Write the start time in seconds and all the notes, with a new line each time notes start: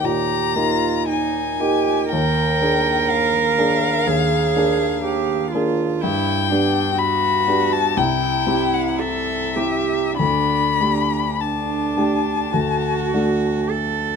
Already playing: A#3 D#4 G4
0.03 A#2 G4 A#5
0.54 A#3 D#4 F4 G4
1.07 D#4 G#5
1.59 A#3 D#4 G4
2.12 D#2 A#4 G5
2.62 A#3 D4 G#4
3.10 F5
3.58 A#3 D4 G#4
4.07 D#2 G#4
4.56 A#3 D4 G#4
5.05 G4
5.52 A#3 D4 F4 G#4
6.01 G2 E4 G5
6.50 B3 D4 G4
6.97 F#4 B5
7.47 B3 D4 G4
7.72 A5
7.97 C2 E4 G5
8.47 C4 E4 G4
8.73 F#5
8.99 A4 E5
9.56 C4 E4 G4
10.17 D2 D4 B5
10.80 A3 D4 G4
11.38 D4 A5
11.97 A3 D4 G4
12.53 D2 F#4
13.14 A3 D4 F#4
13.71 A4